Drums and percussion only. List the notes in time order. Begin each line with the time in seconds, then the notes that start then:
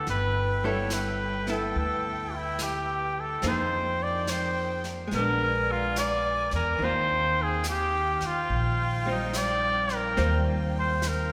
0.07 brush sweep, snare
0.90 snare, hi-hat pedal
1.47 snare
1.74 brush sweep
2.59 snare, hi-hat pedal
3.42 brush sweep, snare
4.27 snare, hi-hat pedal
4.84 snare
5.11 brush sweep, snare
5.96 snare, hi-hat pedal
6.51 snare
6.79 brush sweep
7.64 snare, hi-hat pedal
8.21 snare
8.49 brush sweep
9.33 snare, hi-hat pedal
9.89 snare
10.17 brush sweep, snare
11.02 snare, hi-hat pedal